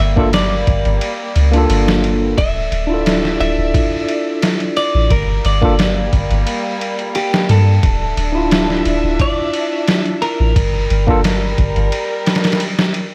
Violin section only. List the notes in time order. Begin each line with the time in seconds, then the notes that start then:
Already playing: G3 A#3
2.38 D5 E5
5.11 G3 A#3
7.83 D4 E5
10.56 G3 A#4